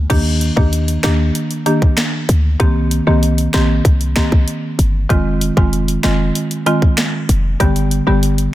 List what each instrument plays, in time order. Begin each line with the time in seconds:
0.10 808-style bass D#2, marimba D#3 A#3 D4 G4, kick, closed hi-hat, crash
0.41 closed hi-hat
0.57 808-style bass D#2, marimba D#3 A#3 D4 G4, kick
0.73 closed hi-hat
0.88 closed hi-hat
1.03 808-style bass D#2, marimba D#3 A#3 D4 G4, finger snap, snare, closed hi-hat
1.35 closed hi-hat
1.51 closed hi-hat
1.66 marimba D#3 A#3 D4 G4, closed hi-hat
1.82 kick
1.97 finger snap, snare, closed hi-hat
2.29 808-style bass D2, closed hi-hat
2.60 808-style bass C2, marimba D#3 A#3 C4 G4, kick, closed hi-hat
2.91 closed hi-hat
3.07 808-style bass C2, marimba D#3 A#3 C4 G4
3.23 closed hi-hat
3.38 closed hi-hat
3.53 808-style bass A#1, marimba D#3 A#3 C4 G4, finger snap, snare, closed hi-hat
3.85 808-style bass C2, kick, closed hi-hat
4.01 closed hi-hat
4.16 marimba D#3 A#3 C4 G4, finger snap, kick, snare, closed hi-hat
4.32 808-style bass C2, kick
4.48 closed hi-hat
4.79 808-style bass G1, closed hi-hat
5.10 808-style bass F1, marimba D#3 G#3 C4 F4, kick, closed hi-hat
5.41 closed hi-hat
5.57 808-style bass F1, marimba D#3 G#3 C4 F4, kick
5.73 closed hi-hat
5.88 closed hi-hat
6.03 808-style bass F1, marimba D#3 G#3 C4 F4, finger snap, snare, closed hi-hat
6.35 closed hi-hat
6.51 closed hi-hat
6.66 marimba D#3 G#3 C4 F4, closed hi-hat
6.82 kick
6.97 finger snap, snare, closed hi-hat
7.29 808-style bass F1, closed hi-hat
7.60 808-style bass G1, marimba D3 G3 B3 G4, kick, closed hi-hat
7.76 closed hi-hat
7.91 closed hi-hat
8.07 808-style bass G1, marimba D3 G3 B3 G4
8.23 closed hi-hat
8.38 closed hi-hat